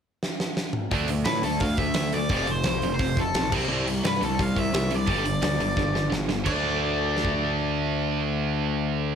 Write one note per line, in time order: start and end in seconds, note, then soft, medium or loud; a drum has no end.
0.23 snare medium
0.40 snare medium
0.57 snare medium
0.73 mid tom loud
0.91 1.24 D2 medium
0.91 1.05 D3 medium
0.91 1.06 A3 loud
0.91 1.08 D4 loud
0.91 kick loud
0.91 open hi-hat medium
1.07 1.23 D3 medium
1.07 1.23 A3 medium
1.07 open hi-hat medium
1.25 1.42 A2 loud
1.25 1.41 D3 medium
1.25 1.41 A3 medium
1.25 1.43 B4 medium
1.25 snare loud
1.25 open hi-hat medium
1.42 1.60 D2 medium
1.42 1.58 D3 medium
1.42 1.59 A3 medium
1.42 1.61 A4 medium
1.42 open hi-hat medium
1.60 1.94 D2 medium
1.60 1.77 D3 medium
1.60 1.77 A3 medium
1.60 1.78 F5 loud
1.60 kick loud
1.60 open hi-hat medium
1.77 1.94 D3 medium
1.77 1.94 A3 medium
1.77 2.14 E5 loud
1.77 kick loud
1.77 open hi-hat medium
1.94 2.29 D2 medium
1.94 2.12 D3 medium
1.94 2.12 A3 medium
1.94 snare loud
1.94 open hi-hat medium
2.12 2.29 D3 medium
2.12 2.29 A3 medium
2.12 2.31 D5 medium
2.12 open hi-hat medium
2.29 2.63 F1 medium
2.29 2.47 F2 medium
2.29 2.47 C3 loud
2.29 2.47 F3 loud
2.29 2.51 D5 loud
2.29 kick loud
2.29 open hi-hat medium
2.47 2.64 F2 medium
2.47 2.64 C3 medium
2.47 open hi-hat medium
2.51 2.93 C5 loud
2.64 2.81 C2 loud
2.64 2.81 F2 medium
2.64 2.81 C3 medium
2.64 snare loud
2.64 open hi-hat medium
2.82 2.99 F1 medium
2.82 2.98 F2 medium
2.82 2.98 C3 medium
2.82 open hi-hat medium
2.94 3.19 C5 loud
2.99 3.33 F1 medium
2.99 3.15 F2 medium
2.99 3.15 C3 medium
2.99 kick loud
2.99 open hi-hat medium
3.16 3.32 F2 medium
3.16 3.32 C3 medium
3.16 3.51 A4 medium
3.16 kick loud
3.16 open hi-hat medium
3.34 3.51 B1 medium
3.34 3.50 F2 medium
3.34 3.50 C3 medium
3.34 snare loud
3.34 open hi-hat medium
3.52 3.67 C2 medium
3.52 3.68 C3 loud
3.52 3.68 G3 medium
3.52 3.69 C4 loud
3.52 kick loud
3.52 crash loud
3.68 4.02 C2 loud
3.68 3.85 C3 medium
3.68 3.85 G3 loud
3.68 3.86 C4 loud
3.86 4.02 C3 medium
3.86 4.02 G3 medium
3.86 open hi-hat medium
4.03 4.21 G2 loud
4.03 4.19 C3 medium
4.03 4.19 G3 medium
4.03 4.23 B4 medium
4.03 snare loud
4.03 open hi-hat medium
4.21 4.38 C2 medium
4.21 4.37 C3 medium
4.21 4.37 G3 medium
4.21 4.40 A4 medium
4.21 open hi-hat medium
4.39 4.72 C2 medium
4.39 4.55 C3 medium
4.39 4.54 G3 medium
4.39 4.58 F5 loud
4.39 kick loud
4.39 open hi-hat medium
4.56 4.71 C3 medium
4.56 4.72 G3 medium
4.56 4.93 E5 loud
4.56 kick medium
4.56 open hi-hat medium
4.72 5.06 C2 loud
4.72 4.88 C3 medium
4.72 4.89 G3 medium
4.72 snare loud
4.72 open hi-hat medium
4.90 5.06 C3 medium
4.90 5.06 G3 medium
4.90 open hi-hat medium
4.95 6.10 D5 loud
5.06 5.41 G1 loud
5.06 5.23 G2 medium
5.06 5.23 D3 loud
5.06 5.24 G3 loud
5.06 kick loud
5.06 open hi-hat medium
5.24 5.40 G2 medium
5.24 5.40 D3 medium
5.24 open hi-hat medium
5.42 5.58 D2 loud
5.42 5.57 G2 medium
5.42 5.58 D3 medium
5.42 snare loud
5.42 open hi-hat medium
5.59 5.76 G1 medium
5.59 5.75 G2 medium
5.59 5.75 D3 medium
5.59 open hi-hat medium
5.76 6.10 G1 medium
5.76 5.92 G2 medium
5.76 5.93 D3 medium
5.76 kick loud
5.76 snare medium
5.93 6.10 G2 medium
5.93 6.10 D3 medium
5.93 snare medium
6.11 6.45 G1 loud
6.11 6.27 G2 medium
6.11 6.27 D3 medium
6.11 snare medium
6.29 6.45 G2 medium
6.29 6.44 D3 medium
6.29 snare medium
6.46 9.15 D2 medium
6.46 9.15 D3 loud
6.46 9.15 A3 loud
6.46 9.15 D4 loud
6.46 9.15 D5 medium
6.46 kick medium
6.46 crash medium
7.17 snare medium
7.25 kick medium